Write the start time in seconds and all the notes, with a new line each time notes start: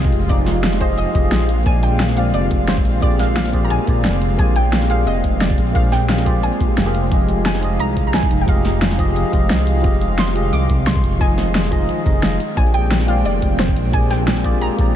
Already playing: C2 F3 G#3 D#4 F4 G4 G#4 D#5 F5
0.05 kick, cabasa
0.12 F1, closed hi-hat, cabasa
0.28 F1 F3 D#4 F4 G4 G#4 D5, kick, closed hi-hat
0.38 cabasa
0.46 snare, closed hi-hat, cabasa
0.64 snare, closed hi-hat
0.73 snare, cabasa
0.80 F3 F4 G4 G#4 C5 D#5, kick, closed hi-hat, cabasa
0.98 F1 D#5, closed hi-hat
1.14 F1 F3 F4 G4 G#4 D#5, kick, closed hi-hat, cabasa
1.32 A#1, snare, closed hi-hat
1.41 cabasa
1.49 D3 G#3 C4, closed hi-hat, cabasa
1.64 A#1 A#3 F4 G4 G#4 C5 D5 G#5, kick, closed hi-hat
1.75 cabasa
1.83 G5, closed hi-hat, cabasa
2.00 snare, closed hi-hat
2.09 snare, cabasa
2.15 A#3 F4 G4 G#4 C5 D5 F5, closed hi-hat, cabasa
2.34 F1 D5, closed hi-hat
2.51 F1, kick, closed hi-hat, cabasa
2.68 C5, snare, closed hi-hat
2.77 kick, cabasa
2.85 A#1, closed hi-hat, cabasa
3.00 A#1 A#3 F4 G4 G#4 C5 D5, kick, closed hi-hat
3.11 cabasa
3.19 F5, snare, closed hi-hat, cabasa
3.36 F5, snare, closed hi-hat
3.45 snare, cabasa
3.52 A#3 F4 G4 G#4 C5 D5, kick, closed hi-hat, cabasa
3.65 A#5
3.70 A#1 G#5, closed hi-hat
3.86 A#1 A#3 F4 G#4 A#4 C5 D5, kick, closed hi-hat, cabasa
4.04 F1, snare, closed hi-hat
4.14 cabasa
4.22 closed hi-hat, cabasa
4.37 A#1 A#3 F4 G4 G#4 C5 G#5, kick, closed hi-hat
4.41 D5
4.48 cabasa
4.56 G5, closed hi-hat, cabasa
4.73 snare, closed hi-hat
4.82 snare, cabasa
4.88 A#3 F4 G4 G#4 C5 F5, closed hi-hat, cabasa
5.07 F1 D#5, closed hi-hat
5.24 F1, kick, closed hi-hat, cabasa
5.41 D5, snare, closed hi-hat
5.50 kick, cabasa
5.58 A#1, closed hi-hat, cabasa
5.73 A#1 A#3 F4 G4 G#4 C5 D5 F5, kick, closed hi-hat
5.84 cabasa
5.92 G5, snare, closed hi-hat, cabasa
6.09 F5, snare, closed hi-hat
6.18 snare, cabasa
6.25 A#3 F4 G4 G#4 C5 D5, kick, closed hi-hat, cabasa
6.43 A#1 G#5, closed hi-hat
6.53 cabasa
6.61 A#1, kick, closed hi-hat, cabasa
6.77 F1, snare, closed hi-hat
6.85 A#3 F4 G4 G#4 C5 F5, cabasa
6.95 closed hi-hat, cabasa
7.10 F1 F3 D#4 F4 G4 G#4 D#5 F5, kick, closed hi-hat
7.21 cabasa
7.29 closed hi-hat, cabasa
7.46 G#5, snare, closed hi-hat
7.55 snare, cabasa
7.61 F3 F4 G4 G#4 D#5, closed hi-hat, cabasa
7.80 C2 A#5, closed hi-hat
7.97 C2, kick, closed hi-hat, cabasa
8.07 A#5
8.14 G#5, snare, closed hi-hat
8.23 kick, cabasa
8.31 F1, closed hi-hat, cabasa
8.41 G5
8.46 F1 F3 F4 G4 G#4 D#5 F5, kick, closed hi-hat
8.57 cabasa
8.65 snare, closed hi-hat, cabasa
8.82 snare, closed hi-hat
8.91 snare, cabasa
8.98 F3 F4 G4 G#4 D#5, kick, closed hi-hat, cabasa
9.16 F1, closed hi-hat
9.31 F1 F3 F4 G4 G#4 D#5, kick, closed hi-hat, cabasa
9.50 C2, snare, closed hi-hat
9.59 cabasa
9.67 closed hi-hat, cabasa
9.83 F1 D#3 F3 F4 G4 G#4 D#5, kick, closed hi-hat
9.94 cabasa
10.02 closed hi-hat, cabasa
10.18 C6, snare, closed hi-hat
10.28 snare, cabasa
10.34 F3 F4 G4 G#4 D#5, closed hi-hat, cabasa
10.53 C2 D6, closed hi-hat
10.70 C2, kick, closed hi-hat, cabasa
10.87 C6, snare, closed hi-hat
10.96 kick, cabasa
11.04 F1, closed hi-hat, cabasa
11.19 F1 F3 D#4 F4 G#4 D#5 G#5, kick, closed hi-hat
11.30 cabasa
11.38 snare, closed hi-hat, cabasa
11.55 snare, closed hi-hat
11.64 snare, cabasa
11.71 F3 D#4 F4 G#4 D#5, kick, closed hi-hat, cabasa
11.89 closed hi-hat
12.05 F1 F3 D#4 F4 G#4 D#5, kick, closed hi-hat, cabasa
12.23 snare, closed hi-hat
12.32 cabasa
12.40 G#3 C4 G5, closed hi-hat, cabasa
12.55 A#1 A#3 F4 G4 G#4 C5 D5 G#5, kick, closed hi-hat
12.66 cabasa
12.74 G5, closed hi-hat, cabasa
12.91 snare, closed hi-hat
13.00 snare, cabasa
13.06 A#3 F4 G4 G#4 C5 D5 F5, closed hi-hat, cabasa
13.25 F1 D5, closed hi-hat
13.42 F1, kick, closed hi-hat, cabasa
13.59 C5, snare, closed hi-hat
13.68 kick, cabasa
13.76 A#1, closed hi-hat, cabasa
13.91 A#1 A#3 F4 G4 G#4 C5 D5 G#5, kick, closed hi-hat
14.03 cabasa
14.11 G5, snare, closed hi-hat, cabasa
14.28 snare, closed hi-hat
14.37 snare, cabasa
14.44 A#3 F4 G4 G#4 C5 D5, kick, closed hi-hat, cabasa
14.61 A#1 A#5, closed hi-hat
14.77 A#1 A#3 F4 G4 G#4 C5 D5, kick, closed hi-hat, cabasa